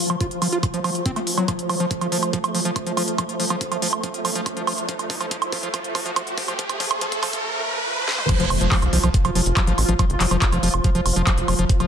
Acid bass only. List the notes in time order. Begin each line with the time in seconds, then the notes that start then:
0.10 F3
0.21 F4
0.42 F3
0.52 F4
0.74 F3
0.84 F3
1.06 C4
1.16 A3
1.38 F#3
1.48 F3
1.69 F3
1.80 F3
2.01 F3
2.12 F3
2.33 F3
2.55 F3
2.65 F3
2.86 F3
2.97 F3
3.18 F3
3.40 F3
3.50 F3
3.72 F3
3.82 F3
4.03 F3
4.25 F3
4.35 F3
4.57 F3
4.67 F3
4.89 F3
5.10 F3
5.21 F3
5.31 F3
5.52 F3
5.63 F3
5.74 F3
5.95 F3
6.06 F3
6.16 F3
6.38 F3
6.48 F3
6.59 F3
6.80 F3
7.01 F3
7.23 F3
8.29 F3
8.40 F3
8.61 F3
8.72 F3
8.93 F3
9.04 F3
9.25 F3
9.35 F3
9.57 F3
9.67 F3
9.89 F3
9.99 F3
10.21 F3
10.31 F3
10.52 F3
10.63 F3
10.84 F3
10.95 F3
11.16 F3
11.27 F3
11.48 F3
11.59 F3
11.80 F3